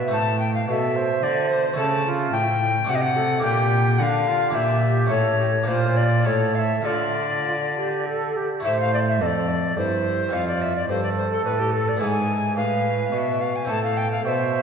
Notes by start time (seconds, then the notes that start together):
Already playing: B2 B4 E5
0.08 A3 C4 A4
0.12 A2 A5
0.40 G5
0.55 F5
0.67 B2 A4 F5
0.72 E5
0.95 C5
1.23 D3 D5
1.49 C5
1.74 A3 E4 A4 A5
1.78 C#3
2.06 F4
2.33 A2 E4 G5
2.85 A3 D4 A4
2.89 C3 F#4 F#5
2.95 D#5
3.02 F#5
3.16 A4
3.40 A#3 D4 G4
3.44 A#2 G4 G5
3.98 D3 D4 F#5
4.03 F5
4.27 F4
4.50 D4 E4 G4
4.55 A#2 G4 E5
4.82 G4
5.06 C#4 E4 A4
5.11 A2 A4 C#5
5.39 G4
5.63 A#3 D4 F4 C5
5.67 A#2 F4
5.97 D5
6.23 A2 E4 A4 C#5
6.55 E5 F5
6.82 D3 F4 A4 D5
7.46 F4
7.76 G4
8.06 A4
8.36 G4
8.60 A3 E4 A4
8.65 A2 C5 E5
8.81 F5
8.94 D5
9.09 E5
9.21 F2 A4 D#5
9.26 D5
9.77 G2 E4 C5
10.29 C4 F4 A4
10.33 F2 F4 F5
10.48 D5
10.62 E5
10.77 D5
10.88 G2 A4 C5
11.04 D5
11.17 C5
11.32 A4
11.45 A2 B4
11.60 G4
11.74 A4
11.89 D5
11.97 B3 E4 B4
12.01 G#2 G#4 G#5
12.57 A2 B4 F5
13.12 B2 F5
13.18 E5
13.41 F5
13.56 G#5
13.65 C4 E4 A4
13.69 A2 A4 A5
13.84 F5
13.97 G5
14.12 F5
14.24 B2 C5 E5